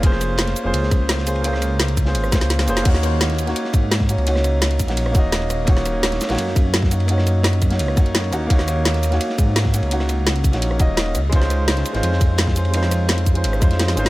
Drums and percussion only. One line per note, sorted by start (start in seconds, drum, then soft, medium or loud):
0.03 kick loud
0.03 closed hi-hat loud
0.03 ride medium
0.12 cross-stick soft
0.12 snare soft
0.21 cross-stick soft
0.21 closed hi-hat medium
0.21 ride medium
0.21 shaker medium
0.38 snare loud
0.38 closed hi-hat medium
0.38 ride medium
0.47 snare medium
0.47 closed hi-hat soft
0.56 closed hi-hat medium
0.56 shaker medium
0.74 closed hi-hat loud
0.74 ride medium
0.83 snare soft
0.91 kick loud
0.91 closed hi-hat medium
0.91 ride medium
0.91 shaker medium
1.09 snare loud
1.09 closed hi-hat loud
1.09 ride medium
1.18 snare medium
1.27 closed hi-hat medium
1.27 ride medium
1.27 shaker medium
1.36 ride soft
1.44 closed hi-hat loud
1.44 ride medium
1.53 cross-stick soft
1.53 snare soft
1.62 cross-stick soft
1.62 closed hi-hat medium
1.62 ride medium
1.62 shaker medium
1.79 snare loud
1.79 closed hi-hat loud
1.79 ride medium
1.88 closed hi-hat soft
1.97 kick medium
1.97 closed hi-hat medium
1.97 ride medium
1.97 shaker medium
2.06 snare medium
2.15 closed hi-hat loud
2.15 ride medium
2.24 cross-stick medium
2.24 shaker soft
2.32 kick loud
2.32 snare medium
2.32 snare loud
2.32 closed hi-hat medium
2.32 ride medium
2.32 shaker medium
2.41 snare medium
2.41 closed hi-hat soft
2.50 snare medium
2.50 closed hi-hat loud
2.50 ride medium
2.59 snare medium
2.59 snare loud
2.59 ride medium
2.68 closed hi-hat medium
2.68 shaker medium
2.77 snare medium
2.77 ride medium
2.77 shaker soft
2.85 kick loud
2.85 closed hi-hat loud
2.85 crash loud
2.85 ride medium
2.94 cross-stick soft
2.94 snare soft
3.03 cross-stick soft
3.03 closed hi-hat medium
3.03 ride medium
3.03 shaker medium
3.21 snare loud
3.21 closed hi-hat medium
3.21 ride medium
3.30 snare soft
3.30 closed hi-hat soft
3.39 closed hi-hat medium
3.39 ride medium
3.39 shaker medium
3.47 snare soft
3.47 closed hi-hat soft
3.56 closed hi-hat medium
3.56 ride medium
3.65 snare soft
3.73 kick loud
3.73 closed hi-hat medium
3.73 ride medium
3.73 shaker medium
3.91 snare loud
3.91 closed hi-hat medium
3.91 ride medium
4.00 kick medium
4.00 snare medium
4.09 closed hi-hat medium
4.09 ride medium
4.09 shaker medium
4.18 ride soft
4.27 closed hi-hat loud
4.27 ride medium
4.36 cross-stick soft
4.36 snare medium
4.44 cross-stick soft
4.44 closed hi-hat medium
4.44 ride medium
4.44 shaker medium
4.61 snare loud
4.61 closed hi-hat loud
4.61 ride medium
4.71 closed hi-hat soft
4.79 kick medium
4.79 closed hi-hat medium
4.79 ride medium
4.79 shaker medium
4.88 snare medium
4.88 closed hi-hat soft
4.97 closed hi-hat medium
4.97 ride medium
5.06 cross-stick medium
5.15 kick loud
5.15 closed hi-hat medium
5.15 ride medium
5.15 shaker medium
5.32 snare loud
5.32 closed hi-hat medium
5.32 ride loud
5.42 ride soft
5.50 cross-stick soft
5.50 closed hi-hat medium
5.50 ride medium
5.50 shaker medium
5.67 kick loud
5.67 closed hi-hat medium
5.67 ride medium
5.77 cross-stick soft
5.77 snare soft
5.86 cross-stick soft
5.86 closed hi-hat medium
5.86 ride medium
5.86 shaker medium
6.03 snare loud
6.03 closed hi-hat medium
6.03 ride medium
6.12 snare medium
6.12 closed hi-hat soft
6.21 snare loud
6.21 closed hi-hat medium
6.21 ride medium
6.21 shaker medium
6.29 snare medium
6.29 closed hi-hat soft
6.29 ride medium
6.34 snare medium
6.34 ride medium
6.38 closed hi-hat medium
6.38 ride medium
6.47 snare soft
6.56 kick loud
6.56 closed hi-hat medium
6.56 ride medium
6.56 shaker medium
6.74 snare loud
6.74 closed hi-hat medium
6.74 ride medium
6.83 kick medium
6.83 snare medium
6.91 closed hi-hat medium
6.91 ride medium
6.91 shaker medium
7.00 ride soft
7.08 closed hi-hat medium
7.08 ride medium
7.18 cross-stick soft
7.18 snare soft
7.26 cross-stick soft
7.26 closed hi-hat medium
7.26 ride medium
7.26 shaker medium
7.43 snare loud
7.43 closed hi-hat medium
7.43 ride medium
7.53 closed hi-hat soft
7.62 kick medium
7.62 closed hi-hat medium
7.62 ride medium
7.62 shaker medium
7.71 snare medium
7.71 closed hi-hat soft
7.79 closed hi-hat medium
7.79 ride medium
7.88 cross-stick medium
7.97 kick loud
7.97 closed hi-hat medium
7.97 ride medium
7.97 shaker medium
8.06 closed hi-hat soft
8.15 snare loud
8.15 closed hi-hat medium
8.15 ride medium
8.24 ride soft
8.33 cross-stick soft
8.33 closed hi-hat medium
8.33 ride medium
8.33 shaker medium
8.50 kick loud
8.50 closed hi-hat medium
8.50 ride medium
8.59 cross-stick soft
8.59 snare soft
8.68 cross-stick soft
8.68 closed hi-hat medium
8.68 ride medium
8.68 shaker medium
8.85 snare loud
8.85 closed hi-hat medium
8.85 ride medium
8.94 snare soft
8.94 closed hi-hat soft
9.03 closed hi-hat medium
9.03 ride medium
9.03 shaker medium
9.12 snare soft
9.12 closed hi-hat soft
9.21 closed hi-hat medium
9.21 ride medium
9.29 snare soft
9.38 kick loud
9.38 closed hi-hat medium
9.38 ride medium
9.38 shaker medium
9.56 snare loud
9.56 closed hi-hat medium
9.56 ride loud
9.65 kick medium
9.65 snare medium
9.74 closed hi-hat medium
9.74 ride medium
9.74 shaker medium
9.83 ride soft
9.91 closed hi-hat medium
9.91 ride medium
9.99 cross-stick soft
9.99 snare medium
10.09 cross-stick soft
10.09 closed hi-hat medium
10.09 ride medium
10.09 shaker medium
10.27 snare loud
10.27 closed hi-hat loud
10.27 ride medium
10.36 closed hi-hat soft
10.44 kick medium
10.44 closed hi-hat medium
10.44 ride medium
10.44 shaker medium
10.53 snare medium
10.53 closed hi-hat soft
10.62 closed hi-hat medium
10.62 ride medium
10.71 cross-stick medium
10.80 kick loud
10.80 closed hi-hat medium
10.80 ride medium
10.80 shaker medium
10.97 snare loud
10.97 closed hi-hat medium
10.97 ride loud
11.06 ride soft
11.15 cross-stick soft
11.15 closed hi-hat medium
11.15 ride medium
11.15 shaker medium
11.32 kick loud
11.32 closed hi-hat loud
11.32 ride medium
11.42 cross-stick soft
11.42 snare soft
11.50 cross-stick soft
11.50 closed hi-hat medium
11.50 ride medium
11.50 shaker medium
11.68 snare loud
11.68 closed hi-hat loud
11.68 ride medium
11.77 snare soft
11.77 closed hi-hat soft
11.85 closed hi-hat medium
11.85 ride medium
11.85 shaker medium
11.95 snare soft
11.95 closed hi-hat soft
12.03 closed hi-hat loud
12.03 ride medium
12.12 snare soft
12.21 kick medium
12.21 closed hi-hat medium
12.21 ride medium
12.21 shaker medium
12.38 snare loud
12.38 closed hi-hat loud
12.38 ride medium
12.47 kick medium
12.47 snare medium
12.56 closed hi-hat medium
12.56 ride medium
12.56 shaker medium
12.65 ride soft
12.74 closed hi-hat loud
12.74 ride loud
12.83 cross-stick soft
12.83 snare soft
12.83 snare medium
12.91 cross-stick soft
12.91 closed hi-hat medium
12.91 ride medium
12.91 shaker medium
13.08 snare loud
13.08 closed hi-hat loud
13.08 ride medium
13.18 closed hi-hat soft
13.26 kick medium
13.26 closed hi-hat medium
13.26 shaker medium
13.35 closed hi-hat soft
13.44 closed hi-hat loud
13.44 ride medium
13.53 cross-stick medium
13.53 shaker soft
13.62 kick loud
13.62 closed hi-hat medium
13.62 ride medium
13.62 shaker medium
13.71 snare soft
13.71 closed hi-hat soft
13.79 snare medium
13.79 snare loud
13.79 closed hi-hat medium
13.79 ride medium
13.88 snare medium
13.97 closed hi-hat medium
13.97 ride medium
13.97 shaker medium
14.05 snare loud
14.05 snare medium
14.05 ride medium